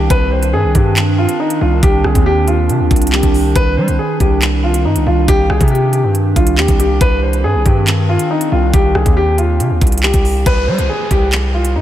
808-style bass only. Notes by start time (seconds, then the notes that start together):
0.10 C2
0.53 G2
0.64 C2
0.75 G2
1.61 C2
1.83 C2
2.04 C2
2.15 D#2
2.69 C3
2.80 D#2
2.91 C2
3.23 C2
3.56 C2
3.77 G3
3.88 C2
4.20 C2
4.85 G2
4.96 C2
5.07 C2
5.28 C2
5.50 C2
5.61 C3
6.04 G2
6.36 C2
6.58 D#2
6.69 C2
7.01 C2
7.44 G2
7.55 C2
7.66 G2
8.52 C2
8.74 C2
8.95 C2
9.06 D#2
9.60 C3
9.71 D#2
9.81 C2
10.14 C2
10.46 C2
10.68 G3
10.78 C2
11.11 C2
11.76 G2